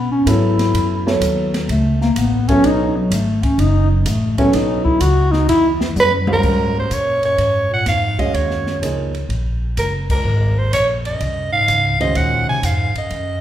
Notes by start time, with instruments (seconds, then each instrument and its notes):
Already playing: upright bass B2, bass clarinet B3
0.11 bass clarinet C#4
0.26 upright bass G#2, grand piano F#3 B3 E4 A4 C#5, bass clarinet E4, hi-hat pedal, ride
0.59 snare, ride
0.74 upright bass F#2, ride
1.06 grand piano F#3 B3 E4 A4 C#5, snare
1.21 upright bass D#2, hi-hat pedal, ride
1.54 snare, ride
1.69 upright bass C#2, bass clarinet A3, ride
2.01 bass clarinet A#3, snare
2.16 upright bass A1, bass clarinet B3, hi-hat pedal, ride
2.48 grand piano F#3 B3 E4 A4 C#5, bass clarinet C#4, kick, ride
2.63 upright bass B1, bass clarinet D#4, ride
2.96 bass clarinet F#3
3.10 upright bass G#1, bass clarinet A3, hi-hat pedal, ride
3.43 bass clarinet C#4, kick, ride
3.58 upright bass F#1, bass clarinet D#4, ride
3.91 bass clarinet F#3
4.06 upright bass A1, bass clarinet A3, hi-hat pedal, ride
4.38 grand piano F#3 B3 E4 A4 C#5, bass clarinet C#4, kick, ride
4.53 upright bass B1, bass clarinet D#4, snare, ride
4.84 bass clarinet E4, kick
5.00 upright bass C#2, bass clarinet F#4, hi-hat pedal, ride
5.31 bass clarinet D#4, snare
5.48 upright bass E2, bass clarinet E4, ride
5.81 snare
5.96 bass clarinet E2, upright bass F#2, hi-hat pedal, high tom
6.00 soprano saxophone B4
6.12 high tom
6.27 bass clarinet C#2, grand piano G#3 C#4 F#4 C5 F5, high tom
6.33 soprano saxophone A#4
6.43 upright bass G#2, kick, crash
6.75 bass clarinet D#2, soprano saxophone C5
6.90 bass clarinet F#2, upright bass A#2, soprano saxophone C#5, hi-hat pedal, ride
7.22 bass clarinet F#2, soprano saxophone C#5, ride
7.38 upright bass G#2, ride
7.70 bass clarinet A#2, soprano saxophone F#5
7.86 upright bass F2, bass clarinet G#2, soprano saxophone F5, snare, hi-hat pedal, ride
8.18 bass clarinet F#2, grand piano G#3 C#4 F#4 C#5 F5, soprano saxophone D#5, kick, ride
8.33 upright bass D#2, bass clarinet F#2, soprano saxophone C#5, ride
8.50 snare
8.67 snare
8.82 upright bass C#2, grand piano F3 A#3 D#4 G#4 C#5, hi-hat pedal, ride
9.15 ride
9.29 upright bass A#1, ride
9.77 upright bass F#1, bass clarinet C#2, soprano saxophone A#4, hi-hat pedal, ride
10.09 bass clarinet C#2, soprano saxophone A#4, kick, crash
10.25 upright bass G#1
10.56 bass clarinet D#2, soprano saxophone C5
10.71 upright bass A#1, bass clarinet F#2, soprano saxophone C#5, hi-hat pedal, ride
11.04 bass clarinet F#2, soprano saxophone D#5, ride
11.21 upright bass C2, ride
11.52 bass clarinet G#2, soprano saxophone F5
11.68 upright bass C#2, hi-hat pedal, ride
11.98 bass clarinet F#2, grand piano D#3 G#3 C#4 F#4 C5, soprano saxophone D#5, ride
12.14 upright bass D#2, bass clarinet A#2, soprano saxophone F#5, ride
12.47 bass clarinet C3, soprano saxophone G#5
12.61 upright bass F2, bass clarinet G#2, hi-hat pedal, ride
12.65 soprano saxophone F5
12.94 bass clarinet F#2, soprano saxophone D#5, muted upright bass stroke, ride
13.10 upright bass F#2, ride